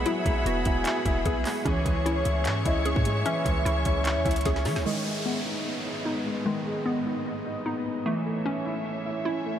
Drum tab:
HH |x---x---x---x---x---x---x---o---|x---x---x---x---x---x---x---x---|x---x---x---x---x---xxxxx---o---|--------------------------------|
CP |----------------x-----------x---|----------------x---------------|----------------x---------------|--------------------------------|
SD |--------------------------------|--------------------------------|------------------------o-o-o-o-|--------------------------------|
BD |----o-------o-------o---o-------|o---o---------------o-----o-----|----o-------o-------o---o-------|--------------------------------|

HH |--------------------------------|--------------------------------|
CP |--------------------------------|--------------------------------|
SD |--------------------------------|--------------------------------|
BD |--------------------------------|--------------------------------|